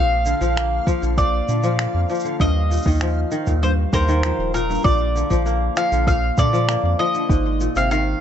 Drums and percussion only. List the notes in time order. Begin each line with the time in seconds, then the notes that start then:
0.26 shaker
0.42 shaker
0.57 finger snap, shaker
0.87 kick, shaker
1.03 shaker
1.18 kick, shaker
1.49 shaker
1.63 shaker
1.79 finger snap, shaker
2.09 shaker
2.15 shaker
2.20 shaker
2.25 shaker
2.40 kick, shaker
2.72 shaker
2.77 shaker
2.82 kick, shaker
2.87 shaker
2.91 shaker
2.97 shaker
2.98 finger snap, shaker
3.02 shaker
3.10 shaker
3.14 shaker
3.32 shaker
3.47 kick, shaker
3.63 shaker
3.93 kick, shaker
4.08 shaker
4.23 finger snap, shaker
4.55 shaker
4.71 shaker
4.74 shaker
4.78 shaker
4.82 kick, shaker
4.86 shaker
4.90 shaker
4.93 shaker
4.97 shaker
5.16 shaker
5.31 kick, shaker
5.46 shaker
5.77 finger snap, shaker
5.92 shaker
6.07 kick, shaker
6.38 kick, shaker
6.54 shaker
6.69 finger snap, shaker
7.14 shaker
7.29 kick, shaker
7.61 shaker
7.76 shaker
7.91 shaker